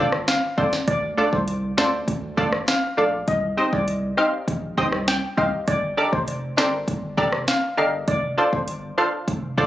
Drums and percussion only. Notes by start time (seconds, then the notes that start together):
0.12 cross-stick
0.28 finger snap, snare, closed hi-hat
0.58 kick
0.73 snare
0.88 kick, closed hi-hat
1.33 kick
1.48 closed hi-hat
1.78 finger snap, snare
2.08 kick, closed hi-hat
2.38 kick
2.52 cross-stick
2.68 finger snap, snare, closed hi-hat
3.28 kick, closed hi-hat
3.73 kick
3.88 closed hi-hat
4.48 kick, closed hi-hat
4.78 kick
4.92 cross-stick
5.08 finger snap, snare, closed hi-hat
5.38 kick
5.68 kick, closed hi-hat
6.13 kick
6.28 closed hi-hat
6.58 finger snap, snare
6.88 kick, closed hi-hat
7.18 kick
7.32 cross-stick
7.48 finger snap, snare, closed hi-hat
8.08 kick, closed hi-hat
8.53 kick
8.68 closed hi-hat
9.28 kick, closed hi-hat
9.58 kick